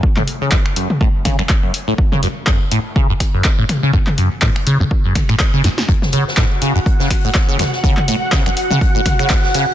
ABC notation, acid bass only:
X:1
M:4/4
L:1/16
Q:"Swing 16ths" 1/4=123
K:F#m
V:1 name="Acid bass" clef=bass
z A,, z C, F,, z F,, z A,, z C, F,, z F,, z A,, | z C, F,, z F,, z A,, z C, F,, z F,, z A,, z C, | F,, z F,, z A,, z C, F,, z F,, z A,, z C, F,, z | F,, z C, z A,, z C, F,, z C, z A,, z C, F,, z |
C, z A,, z C, F,, z C, z A,, z C, F,, z C, z |]